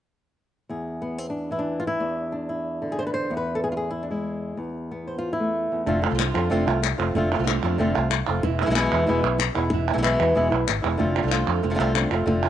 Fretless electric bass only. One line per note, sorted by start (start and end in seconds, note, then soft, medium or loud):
5.87 6.06 F1 medium
6.12 6.30 C2 medium
6.35 6.48 F2 medium
6.51 6.64 F1 medium
6.67 6.92 C2 medium
6.99 7.12 F1 medium
7.15 7.34 F1 medium
7.39 7.58 C2 medium
7.63 7.76 F2 medium
7.80 7.92 F1 medium
7.96 8.21 C2 medium
8.29 8.41 F1 medium
8.44 8.62 E1 medium
8.68 8.87 B1 medium
8.92 9.05 E2 medium
9.08 9.20 E1 medium
9.23 9.48 B1 medium
9.56 9.68 E1 medium
9.72 9.90 E1 medium
9.96 10.15 B1 medium
10.20 10.32 E2 medium
10.37 10.49 E1 medium
10.52 10.64 B1 medium
10.69 10.82 G#1 medium
10.84 10.98 E1 medium
11.00 11.19 F1 medium
11.24 11.42 C2 medium
11.47 11.60 F2 medium
11.64 11.76 F1 medium
11.80 12.04 C2 medium
12.10 12.23 F1 medium
12.27 12.46 F1 medium